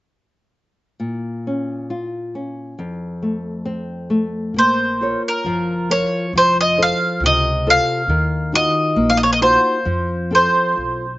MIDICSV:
0, 0, Header, 1, 4, 480
1, 0, Start_track
1, 0, Key_signature, -5, "minor"
1, 0, Tempo, 909091
1, 539, Time_signature, 2, 2, 24, 8
1, 1013, Tempo, 882353
1, 4853, Tempo, 903614
1, 6026, End_track
2, 0, Start_track
2, 0, Title_t, "Mandolin"
2, 0, Program_c, 0, 25
2, 2464, Note_on_c, 0, 72, 64
2, 2804, Note_off_c, 0, 72, 0
2, 2843, Note_on_c, 0, 70, 59
2, 3184, Note_off_c, 0, 70, 0
2, 3186, Note_on_c, 0, 73, 71
2, 3407, Note_off_c, 0, 73, 0
2, 3438, Note_on_c, 0, 72, 73
2, 3541, Note_off_c, 0, 72, 0
2, 3563, Note_on_c, 0, 75, 81
2, 3675, Note_off_c, 0, 75, 0
2, 3682, Note_on_c, 0, 77, 87
2, 3895, Note_off_c, 0, 77, 0
2, 3918, Note_on_c, 0, 75, 89
2, 4155, Note_off_c, 0, 75, 0
2, 4159, Note_on_c, 0, 77, 86
2, 4600, Note_off_c, 0, 77, 0
2, 4623, Note_on_c, 0, 75, 92
2, 4913, Note_off_c, 0, 75, 0
2, 4916, Note_on_c, 0, 77, 72
2, 4955, Note_off_c, 0, 77, 0
2, 4957, Note_on_c, 0, 75, 70
2, 4986, Note_off_c, 0, 75, 0
2, 4988, Note_on_c, 0, 73, 66
2, 5036, Note_off_c, 0, 73, 0
2, 5038, Note_on_c, 0, 75, 70
2, 5087, Note_off_c, 0, 75, 0
2, 5089, Note_on_c, 0, 72, 69
2, 5575, Note_off_c, 0, 72, 0
2, 5582, Note_on_c, 0, 72, 63
2, 6026, Note_off_c, 0, 72, 0
2, 6026, End_track
3, 0, Start_track
3, 0, Title_t, "Nylon-string guitar"
3, 0, Program_c, 1, 24
3, 526, Note_on_c, 1, 46, 44
3, 776, Note_on_c, 1, 61, 34
3, 1004, Note_off_c, 1, 61, 0
3, 1004, Note_on_c, 1, 65, 45
3, 1238, Note_off_c, 1, 65, 0
3, 1248, Note_on_c, 1, 61, 42
3, 1457, Note_off_c, 1, 46, 0
3, 1478, Note_off_c, 1, 61, 0
3, 1485, Note_on_c, 1, 41, 45
3, 1723, Note_on_c, 1, 57, 40
3, 1954, Note_off_c, 1, 57, 0
3, 1957, Note_on_c, 1, 60, 47
3, 2193, Note_off_c, 1, 60, 0
3, 2199, Note_on_c, 1, 57, 50
3, 2425, Note_off_c, 1, 41, 0
3, 2439, Note_off_c, 1, 57, 0
3, 2452, Note_on_c, 1, 58, 46
3, 2694, Note_on_c, 1, 65, 34
3, 2701, Note_on_c, 1, 70, 34
3, 2703, Note_on_c, 1, 73, 42
3, 2927, Note_off_c, 1, 58, 0
3, 2939, Note_on_c, 1, 53, 58
3, 3084, Note_off_c, 1, 65, 0
3, 3088, Note_off_c, 1, 70, 0
3, 3089, Note_off_c, 1, 73, 0
3, 3177, Note_on_c, 1, 65, 42
3, 3182, Note_on_c, 1, 70, 38
3, 3184, Note_on_c, 1, 73, 53
3, 3371, Note_off_c, 1, 65, 0
3, 3374, Note_off_c, 1, 70, 0
3, 3374, Note_off_c, 1, 73, 0
3, 3407, Note_off_c, 1, 53, 0
3, 3426, Note_on_c, 1, 53, 52
3, 3659, Note_on_c, 1, 72, 41
3, 3663, Note_on_c, 1, 65, 39
3, 3663, Note_on_c, 1, 69, 35
3, 3888, Note_off_c, 1, 53, 0
3, 3906, Note_on_c, 1, 48, 65
3, 4043, Note_off_c, 1, 72, 0
3, 4044, Note_off_c, 1, 69, 0
3, 4045, Note_off_c, 1, 65, 0
3, 4139, Note_on_c, 1, 65, 46
3, 4142, Note_on_c, 1, 69, 44
3, 4142, Note_on_c, 1, 72, 47
3, 4328, Note_off_c, 1, 65, 0
3, 4329, Note_off_c, 1, 72, 0
3, 4330, Note_off_c, 1, 69, 0
3, 4364, Note_off_c, 1, 48, 0
3, 4372, Note_on_c, 1, 51, 62
3, 4608, Note_on_c, 1, 63, 39
3, 4614, Note_on_c, 1, 65, 37
3, 4614, Note_on_c, 1, 66, 47
3, 4836, Note_off_c, 1, 51, 0
3, 4844, Note_on_c, 1, 58, 62
3, 4993, Note_off_c, 1, 63, 0
3, 4996, Note_off_c, 1, 65, 0
3, 4996, Note_off_c, 1, 66, 0
3, 5083, Note_on_c, 1, 63, 40
3, 5086, Note_on_c, 1, 65, 40
3, 5088, Note_on_c, 1, 66, 47
3, 5278, Note_off_c, 1, 63, 0
3, 5279, Note_off_c, 1, 65, 0
3, 5280, Note_off_c, 1, 66, 0
3, 5311, Note_off_c, 1, 58, 0
3, 5318, Note_on_c, 1, 53, 57
3, 5559, Note_on_c, 1, 60, 37
3, 5563, Note_on_c, 1, 65, 37
3, 5568, Note_on_c, 1, 69, 43
3, 5790, Note_off_c, 1, 53, 0
3, 5949, Note_off_c, 1, 60, 0
3, 5950, Note_off_c, 1, 65, 0
3, 5954, Note_off_c, 1, 69, 0
3, 6026, End_track
4, 0, Start_track
4, 0, Title_t, "Upright bass"
4, 0, Program_c, 2, 32
4, 2441, Note_on_c, 2, 34, 68
4, 2763, Note_off_c, 2, 34, 0
4, 2932, Note_on_c, 2, 30, 74
4, 3248, Note_off_c, 2, 30, 0
4, 3414, Note_on_c, 2, 29, 75
4, 3728, Note_off_c, 2, 29, 0
4, 3888, Note_on_c, 2, 37, 84
4, 4200, Note_off_c, 2, 37, 0
4, 4364, Note_on_c, 2, 39, 76
4, 4677, Note_off_c, 2, 39, 0
4, 4846, Note_on_c, 2, 34, 84
4, 5159, Note_off_c, 2, 34, 0
4, 5322, Note_on_c, 2, 41, 72
4, 5637, Note_off_c, 2, 41, 0
4, 5808, Note_on_c, 2, 35, 72
4, 6026, Note_off_c, 2, 35, 0
4, 6026, End_track
0, 0, End_of_file